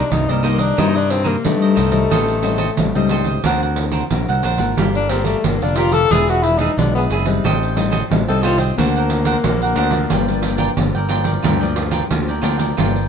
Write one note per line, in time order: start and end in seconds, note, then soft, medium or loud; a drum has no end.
0.00 0.13 D4 medium
0.11 0.26 C2 medium
0.11 0.75 G2 medium
0.11 0.31 D#4 medium
0.11 pandeiro medium
0.29 0.72 C2 medium
0.29 0.73 G3 medium
0.29 0.46 G3 medium
0.29 0.74 A#3 medium
0.29 0.74 D#4 medium
0.29 0.42 A#4 soft
0.29 0.42 C5 soft
0.29 0.43 D#5 soft
0.29 pandeiro soft
0.43 0.62 A#3 medium
0.43 0.59 D#4 medium
0.43 0.58 A#4 medium
0.43 0.58 C5 medium
0.43 0.57 D#5 medium
0.43 pandeiro medium
0.58 0.80 D4 medium
0.58 0.76 A#4 soft
0.58 0.76 C5 soft
0.58 0.75 D#5 soft
0.58 pandeiro medium
0.77 1.35 G2 medium
0.77 1.42 C3 medium
0.77 1.21 G3 medium
0.77 1.21 A#3 medium
0.77 0.93 D#4 medium
0.77 1.22 D#4 medium
0.77 0.98 D#4 loud
0.77 0.93 A#4 medium
0.77 0.94 C5 medium
0.77 0.93 D#5 medium
0.77 pandeiro medium
0.94 1.12 D4 medium
0.94 1.23 A#4 soft
0.94 1.23 C5 soft
0.94 1.24 D#5 soft
0.94 pandeiro soft
1.10 1.28 C4 loud
1.10 pandeiro medium
1.24 1.47 A#3 medium
1.24 1.35 D#4 medium
1.24 1.35 A#4 medium
1.24 1.36 C5 medium
1.24 1.36 D#5 medium
1.24 pandeiro medium
1.45 2.08 G2 medium
1.45 1.74 G2 medium
1.45 1.76 G3 medium
1.45 3.45 A3 medium
1.45 1.77 D#4 medium
1.45 pandeiro medium
1.62 1.74 A#4 soft
1.62 1.75 C5 soft
1.62 1.75 D#5 medium
1.62 pandeiro soft
1.75 2.06 C2 loud
1.75 1.92 D#4 medium
1.75 1.91 A#4 medium
1.75 1.90 C5 medium
1.75 1.90 D#5 medium
1.75 pandeiro medium
1.91 2.38 G3 medium
1.91 2.38 C4 medium
1.91 2.38 D#4 medium
1.91 2.09 A#4 soft
1.91 2.09 C5 soft
1.91 2.08 D#5 soft
1.91 pandeiro medium
2.10 2.69 A1 medium
2.10 2.74 A2 medium
2.10 2.41 A4 medium
2.10 2.42 C5 medium
2.10 2.42 D#5 medium
2.10 2.43 G5 medium
2.10 pandeiro medium
2.29 pandeiro soft
2.42 2.64 G3 medium
2.42 2.64 C4 medium
2.42 2.64 D#4 medium
2.42 2.57 A4 soft
2.42 2.57 C5 soft
2.42 2.57 D#5 soft
2.42 2.57 G5 medium
2.42 pandeiro medium
2.58 2.69 A4 medium
2.58 2.69 C5 medium
2.58 2.69 D#5 medium
2.58 2.69 G5 medium
2.58 pandeiro medium
2.77 2.93 A1 medium
2.77 3.42 A2 medium
2.77 2.88 G3 medium
2.77 2.88 C4 medium
2.77 2.88 D#4 medium
2.77 pandeiro medium
2.95 3.38 C#2 medium
2.95 3.40 G3 medium
2.95 3.40 C4 medium
2.95 3.40 D#4 medium
2.95 3.10 C5 soft
2.95 3.10 D#5 soft
2.95 3.10 G5 soft
2.95 pandeiro soft
3.09 3.26 A4 medium
3.09 3.26 C5 medium
3.09 3.25 D#5 medium
3.09 3.24 G5 medium
3.09 pandeiro medium
3.25 3.43 C5 soft
3.25 3.43 D#5 soft
3.25 3.42 G5 soft
3.25 pandeiro medium
3.44 4.01 D2 medium
3.44 4.08 D3 medium
3.44 4.06 C4 medium
3.44 3.60 D4 medium
3.44 4.06 F#4 medium
3.44 3.60 A#4 medium
3.44 4.07 A#4 medium
3.44 3.61 C5 medium
3.44 3.61 F#5 medium
3.44 pandeiro medium
3.62 3.91 A#4 soft
3.62 3.91 C5 soft
3.62 3.92 F#5 soft
3.62 pandeiro soft
3.76 pandeiro medium
3.92 4.02 D4 medium
3.92 4.03 A#4 medium
3.92 4.03 C5 medium
3.92 4.03 F#5 medium
3.92 pandeiro medium
4.11 4.25 A#1 medium
4.11 4.75 D3 medium
4.11 4.56 C4 medium
4.11 4.56 F#4 soft
4.11 4.57 A#4 medium
4.11 pandeiro medium
4.28 4.43 C2 medium
4.28 4.43 A#4 soft
4.28 4.43 C5 soft
4.28 4.43 F#5 soft
4.28 pandeiro soft
4.43 4.58 A#1 medium
4.43 4.59 D4 medium
4.43 4.59 A#4 medium
4.43 4.59 C5 medium
4.43 4.58 F#5 medium
4.43 pandeiro medium
4.58 4.75 G#1 medium
4.58 5.05 A#3 medium
4.58 5.05 F4 medium
4.58 5.05 A4 medium
4.58 4.76 A#4 soft
4.58 4.76 C5 soft
4.58 4.76 F#5 soft
4.58 pandeiro medium
4.77 5.34 G1 medium
4.77 5.42 G3 medium
4.77 5.09 G4 medium
4.77 5.09 A#4 medium
4.77 5.10 D5 medium
4.77 5.10 F5 medium
4.77 pandeiro medium
4.95 5.11 D4 medium
4.95 pandeiro soft
5.09 5.39 A#3 soft
5.09 5.27 C4 medium
5.09 5.39 F4 medium
5.09 5.25 G4 medium
5.09 5.39 A4 medium
5.09 5.25 A#4 soft
5.09 5.25 D5 medium
5.09 5.26 F5 medium
5.09 pandeiro medium
5.25 5.46 A3 medium
5.25 5.36 G4 medium
5.25 5.36 A#4 medium
5.25 5.36 D5 medium
5.25 5.37 F5 medium
5.25 pandeiro medium
5.44 5.59 G1 medium
5.44 6.08 D3 medium
5.44 5.55 A#3 medium
5.44 5.64 A#3 medium
5.44 5.55 F4 medium
5.44 5.55 A4 medium
5.44 pandeiro medium
5.62 6.04 F1 medium
5.62 6.06 A#3 medium
5.62 5.78 D4 medium
5.62 6.06 F4 medium
5.62 6.07 A4 medium
5.62 5.76 A#4 soft
5.62 5.77 D5 soft
5.62 5.77 F5 soft
5.62 pandeiro soft
5.76 5.94 F4 medium
5.76 5.93 G4 medium
5.76 5.93 A#4 medium
5.76 5.92 D5 medium
5.76 5.92 F5 medium
5.76 pandeiro medium
5.92 6.14 A4 loud
5.92 6.10 A#4 soft
5.92 6.09 D5 soft
5.92 6.09 F5 soft
5.92 pandeiro medium
6.11 6.68 E1 loud
6.11 6.74 E3 medium
6.11 6.73 G#3 medium
6.11 6.27 D4 medium
6.11 6.73 D4 medium
6.11 6.73 F4 medium
6.11 6.31 G#4 medium
6.11 6.27 G#4 medium
6.11 6.27 B4 medium
6.11 6.28 E5 medium
6.11 pandeiro medium
6.29 6.44 F#4 medium
6.29 6.59 G#4 soft
6.29 6.59 B4 soft
6.29 6.60 E5 soft
6.29 pandeiro soft
6.43 6.60 E4 medium
6.43 pandeiro medium
6.58 6.70 D4 medium
6.58 6.79 D#4 medium
6.58 6.70 G#4 medium
6.58 6.70 B4 medium
6.58 6.70 E5 medium
6.58 pandeiro medium
6.78 7.06 B1 medium
6.78 7.41 B2 medium
6.78 7.22 G#3 medium
6.78 6.94 D4 medium
6.78 7.23 D4 medium
6.78 7.23 F4 medium
6.78 pandeiro medium
6.95 7.05 B3 medium
6.95 7.10 G#4 soft
6.95 7.11 B4 soft
6.95 7.11 E5 soft
6.95 pandeiro soft
7.10 7.39 F#1 loud
7.10 7.26 D4 medium
7.10 7.26 G#4 medium
7.10 7.25 B4 medium
7.10 7.25 E5 medium
7.10 pandeiro medium
7.26 7.72 G3 medium
7.26 7.72 C4 medium
7.26 7.72 D#4 medium
7.26 7.43 G#4 soft
7.26 7.43 B4 soft
7.26 7.42 E5 soft
7.26 pandeiro medium
7.44 8.01 A1 medium
7.44 8.08 A2 medium
7.44 7.75 A4 medium
7.44 7.75 C5 medium
7.44 7.76 D#5 medium
7.44 7.76 G5 medium
7.44 pandeiro medium
7.63 pandeiro soft
7.76 7.96 G3 medium
7.76 7.97 C4 medium
7.76 7.97 D#4 medium
7.76 7.90 A4 soft
7.76 7.90 C5 soft
7.76 7.91 D#5 soft
7.76 7.91 G5 medium
7.76 pandeiro medium
7.91 8.02 A4 medium
7.91 8.02 C5 medium
7.91 8.02 D#5 medium
7.91 8.03 G5 medium
7.91 pandeiro medium
8.10 8.25 A1 medium
8.10 8.74 A2 medium
8.10 8.21 G3 medium
8.10 8.21 C4 medium
8.10 8.21 D#4 medium
8.10 pandeiro medium
8.28 8.71 C2 medium
8.28 8.73 G3 medium
8.28 8.73 C4 medium
8.28 8.73 D#4 medium
8.28 8.44 A4 medium
8.28 8.43 C5 soft
8.28 8.43 D#5 soft
8.28 8.43 G5 medium
8.28 pandeiro soft
8.43 8.60 F4 loud
8.43 8.59 A4 medium
8.43 8.59 C5 medium
8.43 8.59 D#5 medium
8.43 8.58 G5 medium
8.43 pandeiro medium
8.58 8.79 C4 medium
8.58 8.76 C5 soft
8.58 8.76 D#5 soft
8.58 8.75 G5 soft
8.58 pandeiro medium
8.78 9.35 D2 loud
8.78 9.41 D3 medium
8.78 9.39 A#3 medium
8.78 10.78 A#3 medium
8.78 9.39 C4 medium
8.78 8.93 D4 medium
8.78 9.40 F#4 medium
8.78 8.93 A#4 medium
8.78 8.94 C5 medium
8.78 8.94 F#5 medium
8.78 pandeiro medium
8.96 9.25 A#4 soft
8.96 9.25 C5 soft
8.96 9.25 F#5 soft
8.96 pandeiro soft
9.10 pandeiro medium
9.25 9.36 D4 medium
9.25 9.36 A#4 medium
9.25 9.36 C5 medium
9.25 9.36 F#5 medium
9.25 pandeiro medium
9.44 9.73 A#1 medium
9.44 10.07 D3 medium
9.44 9.89 A#3 medium
9.44 9.89 C4 medium
9.44 9.89 F#4 medium
9.44 pandeiro medium
9.62 9.75 A#4 soft
9.62 9.76 C5 soft
9.62 9.76 F#5 medium
9.62 pandeiro soft
9.76 10.05 D2 loud
9.76 9.92 D4 medium
9.76 9.92 A#4 medium
9.76 9.91 C5 medium
9.76 9.91 F#5 medium
9.76 pandeiro medium
9.91 10.27 F3 medium
9.91 10.28 A#3 medium
9.91 10.28 D4 medium
9.91 10.09 A#4 soft
9.91 10.09 C5 soft
9.91 10.09 F#5 soft
9.91 pandeiro medium
10.10 10.68 G1 medium
10.10 10.75 G2 medium
10.10 10.41 F4 medium
10.10 10.42 A#4 medium
10.10 10.42 D5 medium
10.10 10.43 G5 medium
10.10 pandeiro medium
10.28 10.73 F3 medium
10.28 10.73 A#3 medium
10.28 10.73 D4 medium
10.28 pandeiro soft
10.42 10.57 F4 soft
10.42 10.57 A#4 medium
10.42 10.57 D5 medium
10.42 10.58 G5 medium
10.42 pandeiro medium
10.58 10.68 F4 medium
10.58 10.69 A#4 medium
10.58 10.69 D5 medium
10.58 10.69 G5 medium
10.58 pandeiro medium
10.77 10.92 G1 medium
10.77 11.41 D3 medium
10.77 10.97 F3 medium
10.77 10.97 A#3 medium
10.77 10.97 D4 medium
10.77 pandeiro medium
10.95 11.37 G1 medium
10.95 11.07 A#4 soft
10.95 11.08 D5 soft
10.95 11.09 G5 soft
10.95 pandeiro soft
11.09 11.41 F3 medium
11.09 11.41 A#3 medium
11.09 11.42 D4 medium
11.09 11.25 F4 medium
11.09 11.24 A#4 medium
11.09 11.24 D5 medium
11.09 11.23 G5 medium
11.09 pandeiro medium
11.24 11.42 A#4 soft
11.24 11.42 D5 soft
11.24 11.41 G5 medium
11.24 pandeiro medium
11.42 12.01 D2 loud
11.42 12.08 G2 medium
11.42 11.59 F4 medium
11.42 11.59 A#4 medium
11.42 11.60 D5 medium
11.42 11.58 G5 medium
11.42 pandeiro medium
11.60 12.06 F3 medium
11.60 12.06 A#3 medium
11.60 12.06 D4 medium
11.60 11.90 A#4 soft
11.60 11.91 D5 soft
11.60 11.91 G5 medium
11.60 pandeiro soft
11.76 pandeiro medium
11.91 12.02 F4 medium
11.91 12.02 A#4 medium
11.91 12.02 D5 medium
11.91 12.02 G5 medium
11.91 pandeiro medium
12.10 12.40 D2 medium
12.10 12.74 D3 medium
12.10 12.30 F3 medium
12.10 12.30 A#3 medium
12.10 12.31 D4 medium
12.10 pandeiro medium
12.28 12.41 A#4 soft
12.28 12.42 D5 soft
12.28 12.42 G5 soft
12.28 pandeiro soft
12.42 12.72 D2 loud
12.42 12.77 F3 medium
12.42 12.77 A#3 medium
12.42 12.77 D4 medium
12.42 12.59 F4 medium
12.42 12.58 A#4 medium
12.42 12.57 D5 medium
12.42 12.57 G5 medium
12.42 pandeiro medium
12.58 12.76 A#4 soft
12.58 12.75 D5 soft
12.58 12.75 G5 medium
12.58 pandeiro medium
12.77 13.08 G1 medium
12.77 13.08 G2 medium
12.77 13.06 F3 medium
12.77 13.06 A#3 medium
12.77 13.06 D4 medium
12.77 13.08 F4 medium
12.77 13.08 A#4 medium
12.77 13.08 D5 medium
12.77 13.08 G5 medium
12.77 pandeiro medium
12.96 pandeiro soft